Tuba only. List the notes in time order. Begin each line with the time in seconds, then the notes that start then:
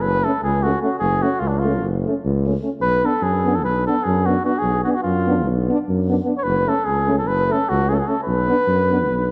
0.02 F#1
0.43 C#2
1.00 F#1
1.41 C#2
1.83 F#1
2.25 C#2
2.80 B1
3.22 F#2
3.64 B1
4.06 F#2
4.63 B1
5.05 F#2
5.46 B1
5.89 F#2
6.45 F#1
6.87 C#2
7.28 F#1
7.70 C#2
8.27 B1
8.67 F#2
9.08 B1